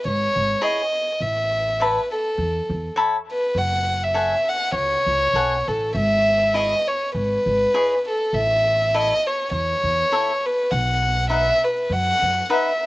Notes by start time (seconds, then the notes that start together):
0.05 G#1 C#5
0.36 G#1
0.61 E4 G#4 C#5 D#5
1.21 A1 E5
1.80 B4 C#5 E5 A5 B5
2.11 A4
2.38 E2
2.70 E2
2.96 C#5 E5 A5 B5
3.32 B4
3.55 F#1 F#5
4.03 E5
4.14 A4 C#5 F#5 G#5
4.48 F#5
4.72 C#2 C#5
5.06 C#2
5.33 B1 A4 C#5 F#5 G#5
5.68 A1 A4
5.95 G#1 E5
6.54 E4 G#4 C#5 D#5
6.87 C#5
7.15 G#1 B4
7.46 G#1
7.74 E4 G#4 C#5 D#5
8.09 A4
8.33 A1 E5
8.94 E4 A4 C#5 D#5 E5
9.26 C#5
9.51 E2 C#5
9.83 E2
10.12 E4 A4 C#5 E5
10.46 B4
10.71 B1 F#5
11.30 D#4 B4 D#5 E5 F#5
11.64 B4
11.90 F#2 F#5
12.22 F#2
12.50 D#4 B4 D#5 E5 F#5